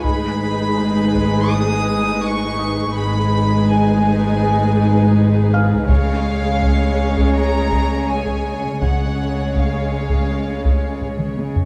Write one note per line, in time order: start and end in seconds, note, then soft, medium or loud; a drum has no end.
0.03 2.93 G#1 medium
0.03 2.93 G#2 medium
0.03 2.93 G#3 medium
0.03 2.93 D#4 medium
0.03 2.93 G#4 medium
0.03 2.92 B4 medium
0.03 1.48 B5 medium
0.03 taiko medium
0.78 2.93 B5 soft
1.14 taiko soft
1.51 2.24 D#6 medium
2.24 2.97 C#6 medium
2.59 4.75 D#6 soft
2.96 5.85 G#1 medium
2.96 5.85 G#2 medium
2.96 5.85 G#3 medium
2.96 5.85 D#4 medium
2.96 5.85 G#4 medium
2.96 5.85 B4 medium
2.96 3.69 B5 medium
3.70 5.53 G#5 medium
5.53 7.69 F5 soft
5.53 7.69 F6 soft
5.88 8.80 C#2 medium
5.88 8.80 C#3 medium
5.88 8.78 G#3 medium
5.88 8.78 C#4 medium
5.88 8.78 G#4 medium
5.88 8.78 C#5 medium
5.88 7.32 F5 medium
5.88 taiko medium
6.63 taiko medium
7.17 taiko medium
7.36 8.09 A#5 medium
7.72 taiko medium
8.09 8.82 G#5 medium
8.27 taiko medium
8.81 11.51 C#2 soft
8.81 11.51 C#3 soft
8.81 11.51 G#3 soft
8.81 11.51 C#4 soft
8.81 11.51 G#4 soft
8.81 11.51 C#5 soft
8.81 9.54 F#5 medium
8.81 taiko medium
9.55 11.02 F5 soft
9.55 taiko medium
10.10 taiko medium
10.65 taiko medium
11.02 taiko low-mid medium
11.20 taiko mid medium
11.38 taiko high medium
11.56 taiko low medium